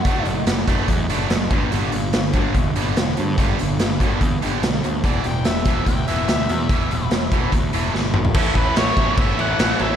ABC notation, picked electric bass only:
X:1
M:4/4
L:1/8
Q:1/4=145
K:Edor
V:1 name="Picked electric bass" clef=bass
F,,, F,,, F,,, F,,, E,, F,,, F,,, G,,, | G,,, G,,, G,,, G,,, E,,, G,,, E,,, G,, | G,,, G,,, G,,, G,,, E,, G,,, B,,, D,, | E,,, E,,, E,,, E,,, D,, E,,, D,, E,, |
E,,, E,,, E,,, E,,, D,, E,,, G,,, ^G,,, | A,,, A,,, A,,, A,,, G,,, A,,, A,,, A,,, |]